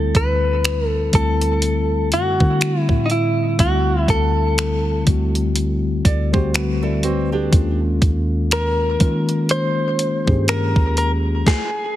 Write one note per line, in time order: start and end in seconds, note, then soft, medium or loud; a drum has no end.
0.00 0.13 D2 loud
0.00 0.96 D3 medium
0.00 0.97 G3 medium
0.00 0.97 A3 medium
0.00 0.98 C4 medium
0.00 0.98 E4 medium
0.00 0.16 A4 medium
0.15 1.10 D2 loud
0.15 0.87 B4 medium
0.15 kick loud
0.15 closed hi-hat soft
0.64 finger snap loud
0.64 closed hi-hat medium
0.87 1.15 A4 medium
1.11 2.14 D2 loud
1.11 2.20 D3 medium
1.11 2.21 G3 medium
1.11 2.22 A3 medium
1.11 2.22 C4 medium
1.11 2.09 A4 medium
1.11 kick medium
1.11 closed hi-hat medium
1.16 2.23 E4 medium
1.41 closed hi-hat soft
1.62 closed hi-hat medium
2.12 2.39 F#2 medium
2.12 2.80 F#4 medium
2.12 closed hi-hat medium
2.38 3.45 D3 medium
2.38 2.88 D3 medium
2.38 3.45 G3 medium
2.38 3.46 A3 medium
2.38 3.47 C4 medium
2.38 kick medium
2.43 3.47 E4 medium
2.61 finger snap loud
2.61 closed hi-hat medium
2.80 3.08 E4 medium
2.89 3.56 A2 loud
2.89 kick medium
3.06 3.11 D#4 medium
3.10 3.57 E4 medium
3.10 closed hi-hat medium
3.57 4.07 D2 loud
3.57 4.89 D3 medium
3.57 4.90 G3 medium
3.57 4.91 A3 medium
3.57 4.91 C4 medium
3.57 4.10 F#4 medium
3.57 kick loud
3.57 closed hi-hat medium
3.62 4.92 E4 medium
4.08 5.03 D2 loud
4.08 5.04 A4 medium
4.08 kick loud
4.08 closed hi-hat soft
4.58 finger snap loud
4.58 closed hi-hat medium
5.05 6.01 D2 loud
5.05 6.14 D3 medium
5.05 6.15 G3 medium
5.05 6.15 A3 medium
5.05 6.16 C4 medium
5.05 kick medium
5.05 closed hi-hat medium
5.10 6.16 F#4 medium
5.35 closed hi-hat soft
5.56 closed hi-hat medium
6.05 7.49 D2 loud
6.05 6.33 A4 medium
6.05 6.32 D5 medium
6.05 kick medium
6.05 closed hi-hat medium
6.32 7.38 D3 medium
6.32 7.39 G3 medium
6.32 7.39 A3 medium
6.32 7.40 C4 medium
6.32 6.53 G4 medium
6.32 6.53 C5 medium
6.32 kick medium
6.36 7.40 F#4 loud
6.54 6.82 F#4 medium
6.54 6.81 B4 medium
6.54 finger snap loud
6.54 closed hi-hat medium
6.82 7.03 E4 medium
6.82 7.02 A4 medium
6.82 7.03 D5 medium
7.03 7.31 C4 medium
7.03 7.31 F#4 medium
7.03 7.31 B4 medium
7.03 closed hi-hat medium
7.32 7.79 D4 medium
7.32 7.79 G4 medium
7.32 7.79 A4 medium
7.50 8.00 D#2 loud
7.50 8.83 D#3 medium
7.50 8.83 G#3 medium
7.50 8.84 A#3 medium
7.50 8.84 C#4 medium
7.50 kick loud
7.50 closed hi-hat medium
7.55 8.85 F4 medium
8.02 8.97 D#2 loud
8.02 kick loud
8.02 closed hi-hat medium
8.51 9.51 A#4 medium
8.51 finger snap loud
8.51 closed hi-hat medium
8.98 10.07 D#3 medium
8.98 10.23 D#3 loud
8.98 10.08 G#3 medium
8.98 10.09 A#3 medium
8.98 10.09 C#4 medium
8.98 kick medium
8.98 closed hi-hat medium
9.03 10.10 F4 medium
9.29 closed hi-hat soft
9.49 10.49 C5 loud
9.49 closed hi-hat medium
9.99 closed hi-hat medium
10.25 10.75 G2 loud
10.25 11.32 D#3 medium
10.25 11.33 A#3 medium
10.25 11.33 C#4 medium
10.25 11.32 G#4 medium
10.25 kick medium
10.30 11.34 G4 medium
10.48 10.97 A#4 loud
10.48 finger snap loud
10.48 closed hi-hat medium
10.76 11.43 D#2 loud
10.76 kick medium
10.97 11.11 A#4 medium
10.97 closed hi-hat medium
11.47 11.96 G#4 medium
11.47 kick loud
11.47 snare medium